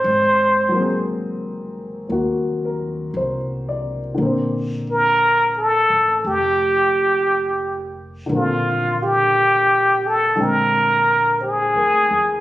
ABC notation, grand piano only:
X:1
M:4/4
L:1/16
Q:"Swing" 1/4=58
K:Bb
V:1 name="Grand piano"
z8 z2 B2 c2 d2- | d z12 z3 | z12 (3c2 B2 _A2 |]
V:2 name="Grand piano"
z2 [_G,B,C_A]6 [B,_G]8 | [D,B,Cc]16 | [D,B,CA]8 [D,_A,Cg]8 |]